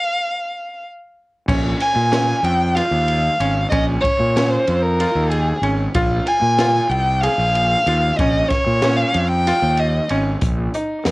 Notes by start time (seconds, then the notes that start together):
Already playing: F5
1.48 A#1 C#4, kick, crash
1.80 G#5, ride
1.96 A#2
2.12 C#4, snare, ride
2.43 F2 G5, ride
2.75 F4 F5, snare, ride
2.91 D#2
3.08 ride
3.40 G#1 C#4, ride
3.69 A#1 C#4 D#5, kick, ride
4.00 C#5, kick
4.05 ride
4.20 A#2
4.36 C#4, snare, ride
4.50 C5
4.67 F2, ride
4.82 A#4
5.00 F4, ride
5.15 D#2
5.30 G#4, ride
5.62 G#1 C#4, ride
5.95 A#1 F4, kick, ride
6.27 G#5, ride
6.42 A#2
6.59 F4, snare, ride
6.89 C2 G5, ride
7.21 G#4 F5, ride
7.38 A#1
7.55 ride
7.86 D#2 F4, ride
8.13 F5
8.17 A#1 C#4 D#5, kick, ride
8.48 C#5, kick, snare, ride
8.66 A#2
8.82 C#4, snare, ride
8.96 F5
9.14 F2, ride
9.28 G5
9.47 F4, snare, ride
9.62 D#2
9.77 D#5, ride
10.09 G#1 C#4, ride
10.41 A#1, kick, closed hi-hat
10.74 D#4, closed hi-hat
11.05 F2 A#4, snare, closed hi-hat